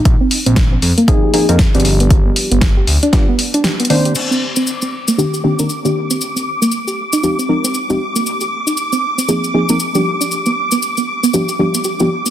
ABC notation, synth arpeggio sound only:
X:1
M:4/4
L:1/16
Q:"Swing 16ths" 1/4=117
K:Cm
V:1 name="Synth arpeggio sound"
z C z C z C z B, z G z E z C z =B, | z =B, z B, z G z D z B, z D G B, B, G | z C z C z C z B, z G z E z C z C | z C z B, z G z E z C z C z C z B, |
z G z E z C z C z C z B, z G z D | z =B, z B, z B, z B, z G G, B, G B, z B, |]